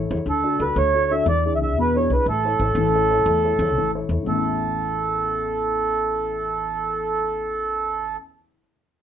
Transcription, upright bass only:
0.11 E2
0.26 D2
0.59 D2
0.76 D2
1.26 E2
1.60 B1
1.76 E2
2.10 B1
2.26 A1
2.59 A1
2.75 A1
3.26 E2
3.59 E2
3.75 A1
4.09 E2
4.26 A1

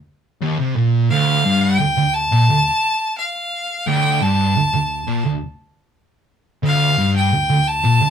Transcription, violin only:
1.10 F5
1.61 G5
2.14 A5
3.18 F5
3.86 G5
4.22 A5
6.66 F5
7.16 G5
7.68 A5

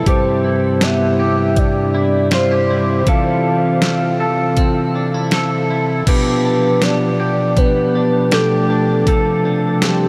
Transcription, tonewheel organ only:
Already playing: E4
0.06 G2 C3 G3 G4
3.08 E3 C4 A4
6.08 B2 F3 D4 G4
9.08 C3 A4

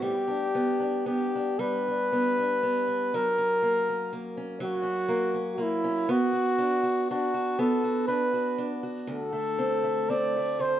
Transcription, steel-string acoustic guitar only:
Already playing: A2 B3 C4 E4
0.02 G3
0.28 D4
0.55 B3
0.80 D4
1.06 B3
1.35 D4
1.59 G3
1.88 D4
2.12 B3
2.39 D4
2.63 B3
2.88 D4
3.14 F#3
3.38 C#4
3.62 A#3
3.89 C#4
4.13 A#3
4.37 C#4
4.60 F#3
4.83 C#4
5.09 A#3
5.34 C#4
5.58 A#3
5.84 C#4
6.09 B3
6.33 F#4
6.58 D4
6.83 F#4
7.11 D4
7.34 F#4
7.59 B3
7.84 F#4
8.08 D4
8.34 F#4
8.58 D4
8.83 F#4
9.07 D2
9.33 A3
9.58 C4
9.84 A3
10.10 C4
10.36 A3
10.59 D2

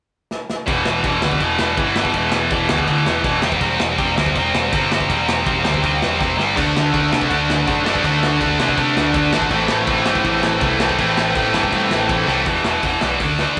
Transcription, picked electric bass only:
0.68 E1
0.86 E1
1.04 E1
1.22 D2
1.40 E1
1.59 E1
1.77 G1
2.14 E1
2.50 E1
2.69 D2
2.87 D2
3.06 E1
3.24 E1
3.43 E1
3.61 E1
3.80 E1
3.98 E1
4.17 D2
4.35 E1
4.55 E1
4.73 G1
5.10 E1
5.47 E1
5.67 D2
5.84 D2
6.02 E1
6.20 E1
6.39 G1
6.57 D2
6.76 D2
6.94 D2
7.12 C3
7.30 D2
7.49 D2
7.67 F#2
8.04 D2
8.41 D2
8.59 C3
8.78 C3
8.96 D2
9.15 D2
9.32 G#1
9.51 A1
9.70 A1
9.87 A1
10.07 G2
10.25 A1
10.43 A1
10.62 C2
10.99 A1
11.35 A1
11.54 G2
11.72 G2
11.90 A1
12.09 A1
12.27 C2
12.47 E1
12.64 E1
12.83 E1
13.02 B1
13.20 D2

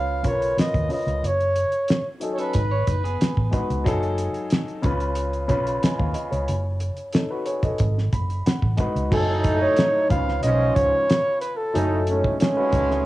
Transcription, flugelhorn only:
Already playing: F5
0.28 C#5
0.60 D#5
0.93 D#5
1.26 C#5
2.32 C#5
2.40 B4
9.13 A4
9.61 C#5
10.11 F5
10.43 D#5
10.75 C#5
11.41 B4
11.57 A4

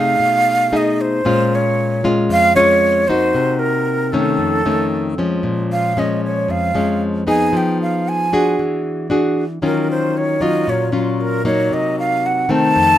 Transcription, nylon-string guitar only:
Already playing: C3 A3 D#4 G#4
0.20 B2
0.72 A3 D#4 G#4
1.25 A#2 G#3 C#4 F4
2.04 G#3 C#4 F4
2.29 F2
2.56 G#3 C#4 F4
3.09 A#3 D#4 F#4
3.35 C3
4.13 D#3 A3 C#4
4.38 F2
4.65 D#3 A3 C#4
5.18 F3 G#3 C#4
5.43 A#2
5.97 F3 G#3 C#4
6.48 F2
6.75 F3 G#3 C#4
7.27 B3 D#4 G#4
7.53 F3
8.33 D4 F#4 G#4
8.59 E3
9.10 D4 F#4 G#4
9.62 D#3 F#3 C#4 F4
10.41 F#3 C#4 F4
10.67 A#2
10.92 F#3 C#4 F4
11.45 F#3 A#3 D#4
11.71 C3
12.49 D#3 A3 C4
12.76 F2

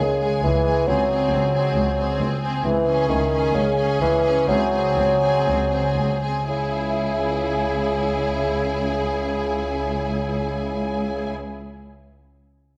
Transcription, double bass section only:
0.00 C#2
0.44 C#2
0.88 C#2
1.32 C#2
1.76 C#2
2.20 C#2
2.65 C#2
3.09 C#2
3.55 C#2
4.01 C#2
4.49 C#2
4.97 C#2
5.46 C#2
5.97 C#2
6.50 C#2

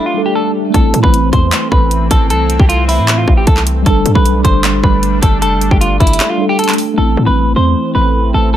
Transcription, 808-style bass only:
0.74 A1
0.94 A2
1.04 A1
1.33 E2
1.72 A1
2.11 A1
2.30 C2
2.59 C2
2.98 A2
3.28 A1
3.47 C2
3.86 G1
4.06 G2
4.15 B1
4.45 G1
4.83 G1
5.23 G1
5.42 F1
5.57 G1
5.71 G1
6.00 G1
6.98 A1
7.17 A2
7.27 A1
7.56 E2
7.95 A1
8.34 A1
8.54 C2

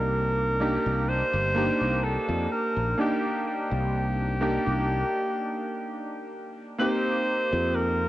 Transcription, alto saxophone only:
Already playing: A#4
1.09 C5
2.04 A4
2.52 A#4
3.00 G4
3.47 G4
6.80 C5
7.75 A#4

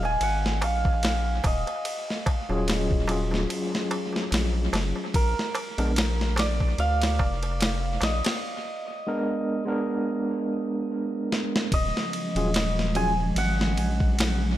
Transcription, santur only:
Already playing: D#5 F5
0.05 G#5
0.23 F#5
0.64 F5
1.46 D#5
5.15 A#4
6.39 D5
6.80 F5
8.03 D#5
11.74 D#5
12.96 G#5
13.38 F#5

